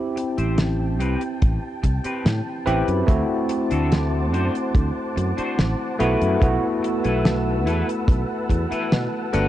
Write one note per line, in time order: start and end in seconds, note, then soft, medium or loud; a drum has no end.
0.00 2.62 C4 medium
0.00 2.62 E4 medium
0.00 2.63 G4 medium
0.00 3.05 G5 medium
0.00 9.30 A5 medium
0.16 muted clean electric guitar stroke medium
0.16 closed hi-hat medium
0.37 1.00 A1 medium
0.37 0.58 C4 medium
0.37 0.59 G4 medium
0.37 0.59 C5 medium
0.37 closed hi-hat medium
0.58 snare loud
0.58 closed hi-hat medium
1.00 1.15 C2 medium
1.00 1.21 C4 medium
1.00 1.21 G4 medium
1.00 1.22 B4 medium
1.00 closed hi-hat medium
1.21 closed hi-hat medium
1.42 1.57 A1 medium
1.42 kick loud
1.42 closed hi-hat medium
1.83 1.98 C2 medium
1.83 muted clean electric guitar stroke medium
1.83 kick medium
1.83 closed hi-hat medium
2.04 2.25 C4 medium
2.04 2.25 G4 medium
2.04 2.26 B4 medium
2.04 muted fretless electric bass stroke soft
2.04 closed hi-hat medium
2.25 2.40 A2 medium
2.25 snare loud
2.25 closed hi-hat medium
2.66 2.81 A1 medium
2.66 2.88 C4 medium
2.66 3.03 C4 medium
2.66 3.04 E4 medium
2.66 2.88 G4 medium
2.66 3.04 G4 loud
2.66 3.03 B4 medium
2.66 2.88 B4 medium
2.66 closed hi-hat medium
2.88 3.02 F#2 medium
2.88 closed hi-hat medium
3.07 3.23 D2 loud
3.07 5.94 A3 medium
3.07 5.95 C4 medium
3.07 5.95 E4 medium
3.07 5.96 F#4 medium
3.07 5.97 C5 medium
3.07 9.48 F#5 medium
3.07 5.97 D6 medium
3.07 kick loud
3.07 closed hi-hat medium
3.49 muted clean electric guitar stroke medium
3.49 closed hi-hat medium
3.71 4.34 D2 medium
3.71 3.91 D4 medium
3.71 3.92 F#4 medium
3.71 3.92 A4 medium
3.71 closed hi-hat medium
3.92 snare loud
3.92 closed hi-hat medium
4.33 4.48 F#2 medium
4.33 4.54 D4 medium
4.33 4.55 F#4 medium
4.33 4.55 C5 medium
4.33 closed hi-hat medium
4.55 closed hi-hat medium
4.75 4.90 D2 medium
4.75 kick loud
4.75 closed hi-hat medium
5.16 5.31 F#2 medium
5.16 muted clean electric guitar stroke medium
5.16 closed hi-hat medium
5.37 5.58 D4 medium
5.37 5.58 F#4 medium
5.37 5.59 C5 medium
5.37 muted fretless electric bass stroke soft
5.37 closed hi-hat medium
5.59 5.73 A1 medium
5.59 snare loud
5.59 closed hi-hat medium
5.99 6.15 B1 medium
5.99 6.36 A3 medium
5.99 6.37 B3 medium
5.99 6.67 E4 medium
5.99 6.37 E4 medium
5.99 6.37 F#4 loud
5.99 6.67 A4 medium
5.99 9.30 B4 medium
5.99 6.67 B4 medium
5.99 9.30 E6 medium
5.99 closed hi-hat medium
6.21 6.35 F#2 medium
6.21 closed hi-hat medium
6.40 6.56 B1 medium
6.40 9.28 A3 medium
6.40 9.28 B3 medium
6.40 9.29 E4 medium
6.40 9.29 F#4 medium
6.40 kick loud
6.40 closed hi-hat loud
6.83 muted clean electric guitar stroke medium
6.83 closed hi-hat medium
7.04 7.67 B1 medium
7.04 7.25 E4 medium
7.04 7.25 A4 medium
7.04 7.26 B4 medium
7.04 closed hi-hat medium
7.25 snare loud
7.25 closed hi-hat medium
7.66 7.81 E2 medium
7.66 7.88 E4 medium
7.66 7.88 A4 medium
7.66 7.88 B4 loud
7.66 closed hi-hat medium
7.89 closed hi-hat medium
8.08 8.23 B1 medium
8.08 kick loud
8.08 closed hi-hat medium
8.49 8.64 E2 medium
8.49 muted clean electric guitar stroke medium
8.49 kick medium
8.49 closed hi-hat medium
8.71 8.92 E4 medium
8.71 8.92 A4 medium
8.71 8.92 B4 medium
8.71 muted fretless electric bass stroke soft
8.71 closed hi-hat medium
8.92 9.06 B2 medium
8.92 snare loud
8.92 closed hi-hat medium
9.33 9.48 G1 medium
9.33 9.48 A3 medium
9.33 9.48 B3 medium
9.33 9.48 D4 medium
9.33 9.48 F#4 medium
9.33 9.48 G4 medium
9.33 9.48 B4 medium
9.33 9.48 B4 loud
9.33 9.48 F#5 loud
9.33 9.48 D6 medium
9.33 closed hi-hat medium